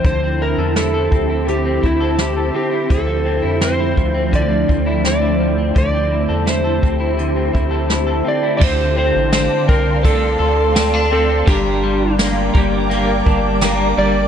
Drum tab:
CC |--------|--------|--------|x-------|
RD |--------|--------|--------|--x-x-x-|
HH |x-x-x-x-|x-x-x-x-|x-x-x-x-|--------|
TB |--------|--------|--------|--x---x-|
SD |--o---o-|--o---o-|--o---o-|--o---o-|
BD |o--o-o--|o--ooo--|o--o-o--|o--oo---|

CC |--------|
RD |x-x-x-x-|
HH |--------|
TB |--x---x-|
SD |--o---o-|
BD |o--o-o--|